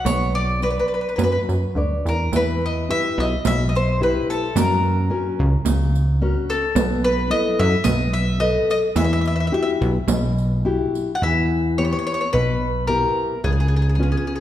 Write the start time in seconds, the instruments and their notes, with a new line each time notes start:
0.05 analog synth bass B1, nylon-string guitar B3, mandolin C#5, riq
0.35 mandolin D5
0.62 nylon-string guitar B4 C#5 D5, mandolin B4, riq
0.70 mandolin B4
0.79 mandolin B4
0.88 mandolin B4
0.94 mandolin B4
1.01 mandolin B4
1.09 mandolin B4
1.16 analog synth bass F#2, nylon-string guitar F#3, mandolin B4, riq
1.23 mandolin B4
1.32 mandolin B4
1.49 analog synth bass F#2, riq
1.75 analog synth bass D2, nylon-string guitar B4 C#5 D5
2.05 analog synth bass E2, mandolin A#4, riq
2.32 analog synth bass E2, nylon-string guitar E3, mandolin B4, riq
2.66 mandolin D#5
2.89 nylon-string guitar E4 G4 B4, mandolin E5
3.18 analog synth bass B1, mandolin D#5
3.45 analog synth bass B1, nylon-string guitar B2, mandolin E5, riq
3.69 mandolin D#5
3.75 mandolin C5, riq
4.01 nylon-string guitar E4 G4 B4, mandolin B4
4.30 mandolin A4, riq
4.56 analog synth bass F#2, nylon-string guitar F#3, mandolin A#4, riq
5.10 nylon-string guitar C#4 F#4 A#4
5.39 analog synth bass C#2
5.65 analog synth bass C#2, nylon-string guitar C#3, riq
5.95 riq
6.22 nylon-string guitar C#4 F#4 A#4
6.50 mandolin A4, riq
6.75 analog synth bass B1, nylon-string guitar B3, riq
7.04 mandolin B4
7.30 nylon-string guitar E4 A4 B4, mandolin D#5
7.59 analog synth bass F#2, mandolin E5
7.84 analog synth bass B1, nylon-string guitar B3, mandolin D#5, riq
8.13 mandolin E5, riq
8.40 nylon-string guitar A4 B4 D#5, mandolin D#5
8.70 mandolin D#5, riq
8.96 analog synth bass E2, nylon-string guitar E3, mandolin E5, riq
9.04 mandolin E5
9.13 mandolin E5
9.21 mandolin E5
9.25 mandolin E5, riq
9.36 mandolin E5
9.40 mandolin E5
9.47 mandolin E5
9.52 nylon-string guitar E4 F#4 G4, mandolin E5
9.62 mandolin E5
9.81 analog synth bass B1, riq
10.08 analog synth bass B1, nylon-string guitar B2, riq
10.38 riq
10.65 nylon-string guitar E4 F#4 G4
10.95 riq
11.15 mandolin F#5
11.22 analog synth bass E2, nylon-string guitar E3, mandolin E5
11.78 nylon-string guitar B3 E4 G4, mandolin C#5
11.85 mandolin C#5
11.93 mandolin C#5
11.99 mandolin C#5
12.07 mandolin C#5
12.14 mandolin C#5
12.21 mandolin C#5
12.33 analog synth bass B1, nylon-string guitar B2, mandolin B4
12.87 nylon-string guitar B3 E4 G4, mandolin A#4
13.44 analog synth bass C#2, nylon-string guitar C#3, mandolin G#4
13.52 mandolin G#4
13.60 mandolin G#4
13.68 mandolin G#4
13.76 mandolin G#4
13.82 mandolin G#4
13.89 mandolin G#4
13.95 nylon-string guitar B3 C#4, mandolin G#4
14.00 nylon-string guitar F4, mandolin G#4
14.12 mandolin G#4
14.17 mandolin G#4
14.27 mandolin G#4
14.36 mandolin G#4